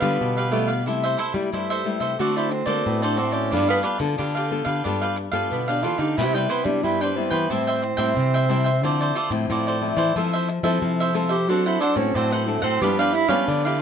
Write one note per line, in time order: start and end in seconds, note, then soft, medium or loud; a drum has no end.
0.00 0.17 D3 medium
0.00 0.47 G3 medium
0.00 0.51 B3 medium
0.00 0.47 B3 medium
0.00 0.47 F4 medium
0.00 0.35 G4 medium
0.00 0.35 B4 medium
0.00 0.34 F5 medium
0.21 0.87 B2 medium
0.21 0.84 D3 medium
0.37 0.51 G4 medium
0.37 0.51 B4 medium
0.37 0.52 F5 medium
0.51 0.81 G3 medium
0.51 0.72 A3 medium
0.51 0.81 B3 medium
0.51 0.68 D4 soft
0.51 0.81 F4 medium
0.51 0.68 G4 soft
0.51 0.67 B4 soft
0.51 0.66 F5 soft
0.67 0.85 G4 soft
0.67 0.84 B4 medium
0.67 0.84 F5 medium
0.86 1.50 C3 soft
0.86 1.15 C3 medium
0.86 1.18 G3 soft
0.86 1.18 A3 medium
0.86 1.02 E4 soft
0.86 1.19 E4 medium
0.86 1.02 A4 soft
0.86 1.02 C5 medium
0.86 1.02 E5 medium
1.03 1.17 A4 medium
1.03 1.18 C5 medium
1.03 1.19 E5 medium
1.18 1.33 E4 medium
1.18 1.33 A4 medium
1.18 1.33 C5 medium
1.18 1.33 E5 medium
1.34 1.49 G3 medium
1.34 1.80 G3 medium
1.34 1.80 A3 medium
1.34 1.80 E4 medium
1.34 muted cavaquinho stroke soft
1.52 2.16 G2 medium
1.52 1.96 G3 medium
1.52 1.68 E4 soft
1.52 1.69 A4 soft
1.52 1.69 C5 soft
1.52 1.69 E5 soft
1.70 2.01 A4 medium
1.70 2.00 C5 medium
1.70 1.99 E5 medium
1.85 2.14 G3 medium
1.85 2.14 A3 medium
1.85 2.14 E4 medium
2.00 2.16 C3 medium
2.00 2.18 A4 medium
2.00 2.17 C5 medium
2.00 2.17 E5 medium
2.19 2.83 D3 medium
2.19 2.62 D3 medium
2.19 2.64 A3 soft
2.19 2.64 C4 medium
2.19 2.35 F#4 soft
2.19 2.39 F#4 medium
2.19 2.64 F#4 medium
2.19 2.35 A4 soft
2.19 2.35 C5 medium
2.19 2.35 D5 soft
2.36 2.53 E4 medium
2.36 2.50 A4 medium
2.36 2.51 C5 medium
2.36 2.51 D5 medium
2.51 2.69 C4 medium
2.51 muted cavaquinho stroke soft
2.66 2.82 D3 medium
2.66 3.13 A3 medium
2.66 2.88 A#3 medium
2.66 3.13 C4 medium
2.66 3.13 F#4 medium
2.66 3.00 A4 medium
2.66 3.00 C5 medium
2.66 2.99 D5 medium
2.86 3.49 A2 medium
2.86 3.53 A2 medium
2.86 3.05 B3 medium
3.02 3.20 D4 medium
3.02 3.16 A4 medium
3.02 3.17 C5 medium
3.02 3.17 D5 medium
3.17 3.46 A3 medium
3.17 3.47 C4 medium
3.17 3.36 C4 medium
3.17 3.33 F#4 soft
3.17 3.47 F#4 medium
3.17 3.33 A4 soft
3.17 3.32 C5 medium
3.17 3.31 D5 soft
3.32 3.55 C#4 medium
3.32 3.50 A4 soft
3.32 3.50 C5 soft
3.32 3.49 D5 medium
3.51 3.81 G2 medium
3.51 4.16 G3 soft
3.51 3.97 B3 medium
3.51 3.67 D4 soft
3.51 3.69 D4 loud
3.51 3.97 F4 medium
3.51 3.67 G4 soft
3.51 3.97 A4 medium
3.51 3.68 B4 medium
3.51 3.67 F5 soft
3.69 3.80 B3 medium
3.69 3.83 G4 medium
3.69 3.83 B4 medium
3.69 3.84 F5 medium
3.83 3.98 D4 medium
3.83 3.98 G4 medium
3.83 3.98 B4 medium
3.83 3.99 F5 medium
3.99 4.15 D3 medium
3.99 4.46 B3 medium
3.99 4.46 F4 medium
3.99 4.46 A4 medium
3.99 muted cavaquinho stroke soft
4.18 4.61 D3 loud
4.18 4.82 D3 medium
4.18 4.34 D4 soft
4.18 4.34 G4 medium
4.18 4.34 B4 soft
4.18 4.33 F5 medium
4.35 4.66 G4 medium
4.35 4.65 B4 medium
4.35 4.63 F5 medium
4.51 4.79 B3 soft
4.51 4.80 F4 medium
4.51 4.80 A4 medium
4.65 4.81 D3 medium
4.65 4.83 G4 medium
4.65 4.82 B4 medium
4.65 4.82 F5 medium
4.84 5.28 G2 medium
4.84 5.48 G3 medium
4.84 5.16 B3 medium
4.84 5.00 D4 soft
4.84 5.17 F4 medium
4.84 5.00 G4 soft
4.84 5.17 A4 medium
4.84 5.00 B4 medium
4.84 5.00 F5 medium
5.01 5.16 G4 medium
5.01 5.16 B4 medium
5.01 5.16 F5 medium
5.16 muted cavaquinho stroke soft
5.32 5.48 G2 medium
5.32 5.78 B3 medium
5.32 5.78 F4 medium
5.32 5.66 G4 medium
5.32 5.79 A4 medium
5.32 5.66 B4 medium
5.32 5.65 F5 medium
5.52 5.85 B2 medium
5.52 6.15 D3 medium
5.52 5.71 B3 medium
5.68 5.85 D4 medium
5.68 5.82 G4 medium
5.68 5.83 B4 medium
5.68 5.83 F5 medium
5.83 5.99 E3 medium
5.83 6.04 B3 medium
5.83 5.99 D4 soft
5.83 6.01 F4 loud
5.83 6.04 F4 soft
5.83 5.99 G4 soft
5.83 6.04 A4 medium
5.83 5.98 B4 soft
5.83 5.97 F5 soft
5.98 6.15 D3 medium
5.98 6.19 D#4 medium
5.98 6.16 G4 soft
5.98 6.15 B4 medium
5.98 6.15 F5 medium
6.17 6.46 C3 medium
6.17 6.81 C3 medium
6.17 6.62 G3 medium
6.17 6.63 B3 medium
6.17 6.33 E4 soft
6.17 6.37 E4 loud
6.17 6.63 E4 medium
6.17 6.33 B4 medium
6.17 6.33 C5 soft
6.17 6.33 G5 medium
6.35 6.51 G3 medium
6.35 6.49 B4 medium
6.35 6.49 C5 soft
6.35 6.49 G5 medium
6.49 6.66 B3 medium
6.49 6.63 E4 medium
6.49 6.64 B4 medium
6.49 6.64 C5 medium
6.49 6.64 G5 medium
6.64 7.11 G3 medium
6.64 6.80 G3 medium
6.64 7.11 B3 medium
6.64 6.85 D4 medium
6.64 7.11 E4 medium
6.64 muted cavaquinho stroke soft
6.83 7.47 G2 medium
6.83 7.27 G3 loud
6.83 6.99 E4 soft
6.83 7.03 E4 medium
6.83 7.00 B4 soft
6.83 6.99 C5 soft
6.83 7.00 G5 medium
7.01 7.18 D4 medium
7.01 7.30 B4 medium
7.01 7.31 C5 medium
7.01 7.29 G5 medium
7.16 7.45 G3 medium
7.16 7.45 B3 medium
7.16 7.33 C4 medium
7.16 7.45 E4 medium
7.30 7.47 E3 medium
7.30 7.52 B3 medium
7.30 7.48 B4 medium
7.30 7.49 C5 medium
7.30 7.48 G5 medium
7.50 7.93 A2 medium
7.50 8.14 A2 medium
7.50 7.82 G3 medium
7.50 9.50 C4 medium
7.50 7.82 C4 medium
7.50 7.82 E4 medium
7.50 7.65 A4 soft
7.50 7.66 C5 medium
7.50 7.66 E5 medium
7.50 7.66 G5 medium
7.67 7.82 C5 medium
7.67 7.82 E5 medium
7.67 7.82 G5 medium
7.82 muted cavaquinho stroke soft
7.97 8.13 A2 medium
7.97 8.44 G3 medium
7.97 8.44 C4 medium
7.97 8.44 E4 medium
7.97 8.31 C5 medium
7.97 8.31 E5 medium
7.97 8.31 G5 medium
8.17 8.83 C3 medium
8.17 8.80 E3 medium
8.34 8.48 C5 medium
8.34 8.49 E5 medium
8.34 8.49 G5 medium
8.49 8.69 G3 medium
8.49 8.69 C4 medium
8.49 8.70 E4 medium
8.49 8.65 A4 soft
8.49 8.65 C5 soft
8.49 8.64 E5 medium
8.49 8.63 G5 soft
8.64 8.82 C5 soft
8.64 8.81 E5 soft
8.64 8.81 G5 medium
8.83 9.11 D3 loud
8.83 9.46 D3 medium
8.83 9.15 F3 medium
8.83 9.15 C4 soft
8.83 9.15 E4 medium
8.83 8.99 F4 soft
8.83 8.99 A4 soft
8.83 8.99 C5 medium
8.83 9.00 D5 medium
9.01 9.15 A4 soft
9.01 9.15 C5 medium
9.01 9.16 D5 medium
9.15 9.30 F4 medium
9.15 9.30 A4 medium
9.15 9.30 C5 medium
9.15 9.31 D5 medium
9.30 9.46 A2 medium
9.30 9.76 F3 medium
9.30 9.77 C4 medium
9.30 9.77 E4 medium
9.30 muted cavaquinho stroke soft
9.49 10.13 A2 medium
9.49 9.92 A2 loud
9.49 9.65 F4 soft
9.49 9.65 A4 soft
9.49 9.66 C5 soft
9.49 9.66 D5 medium
9.67 9.97 A4 medium
9.67 9.97 C5 medium
9.67 9.95 D5 medium
9.81 10.02 F3 medium
9.81 10.02 C4 medium
9.81 10.02 E4 medium
9.97 10.12 E3 medium
9.97 10.14 A4 medium
9.97 10.14 C5 medium
9.97 10.13 D5 medium
10.16 10.58 F3 medium
10.16 10.79 F3 medium
10.16 10.47 C4 medium
10.16 10.48 E4 medium
10.16 10.31 F4 soft
10.16 10.32 A4 soft
10.16 10.48 A4 medium
10.16 10.32 C5 medium
10.16 10.32 E5 medium
10.33 10.48 A4 medium
10.33 10.48 C5 medium
10.33 10.48 E5 medium
10.48 muted cavaquinho stroke soft
10.63 10.79 F3 medium
10.63 11.09 C4 medium
10.63 11.09 E4 medium
10.63 11.10 A4 medium
10.63 10.98 A4 medium
10.63 10.97 C5 medium
10.63 10.97 E5 medium
10.82 11.45 C3 medium
10.82 11.49 F3 medium
11.00 11.14 A4 medium
11.00 11.14 C5 medium
11.00 11.15 E5 medium
11.14 11.35 C4 medium
11.14 11.35 E4 medium
11.14 11.30 F4 soft
11.14 11.35 A4 medium
11.14 11.30 A4 soft
11.14 11.29 C5 medium
11.14 11.28 E5 soft
11.29 11.51 G4 medium
11.29 11.47 A4 medium
11.29 11.46 C5 medium
11.29 11.46 E5 medium
11.49 11.77 F#3 loud
11.49 12.12 F#3 medium
11.49 11.80 C4 medium
11.49 11.64 D4 soft
11.49 11.80 D4 medium
11.49 11.68 F#4 medium
11.49 11.64 A4 soft
11.49 11.81 A4 medium
11.49 11.64 C5 soft
11.49 11.65 F#5 medium
11.66 11.82 E4 medium
11.66 11.80 A4 soft
11.66 11.80 C5 medium
11.66 11.81 F#5 medium
11.80 11.95 D4 medium
11.80 11.98 D4 medium
11.80 11.95 A4 medium
11.80 11.95 C5 medium
11.80 11.96 F#5 medium
11.96 12.11 A2 medium
11.96 12.42 C4 medium
11.96 12.17 C#4 medium
11.96 12.42 D4 medium
11.96 12.42 A4 medium
11.96 muted cavaquinho stroke soft
12.15 12.57 A2 loud
12.15 12.78 F#3 medium
12.15 12.35 C4 medium
12.15 12.30 D4 soft
12.15 12.31 A4 soft
12.15 12.31 C5 medium
12.15 12.31 F#5 soft
12.32 12.49 E3 medium
12.32 12.63 A4 medium
12.32 12.62 C5 medium
12.32 12.61 F#5 medium
12.47 12.64 A3 medium
12.47 12.67 C4 medium
12.47 12.67 D4 medium
12.47 12.68 A4 medium
12.62 12.78 A2 medium
12.62 12.84 C4 medium
12.62 12.80 A4 medium
12.62 12.79 C5 medium
12.62 12.79 F#5 medium
12.81 13.45 G2 medium
12.81 13.13 F3 medium
12.81 13.24 G3 medium
12.81 13.00 B3 medium
12.81 13.13 B3 medium
12.81 12.97 D4 medium
12.81 13.13 D4 medium
12.81 12.97 G4 medium
12.81 12.97 B4 medium
12.81 12.98 F5 medium
12.99 13.14 D4 medium
12.99 13.13 G4 medium
12.99 13.13 B4 medium
12.99 13.14 F5 medium
13.13 13.30 E4 loud
13.13 muted cavaquinho stroke soft
13.28 13.75 F3 medium
13.28 13.44 G3 medium
13.28 13.75 B3 medium
13.28 13.49 C#4 medium
13.28 13.75 D4 medium
13.28 13.63 G4 medium
13.28 13.62 B4 medium
13.28 13.62 F5 medium
13.47 13.82 D3 medium
13.47 13.67 D4 medium
13.65 13.81 E4 medium
13.65 13.79 G4 medium
13.65 13.80 B4 medium
13.65 13.80 F5 medium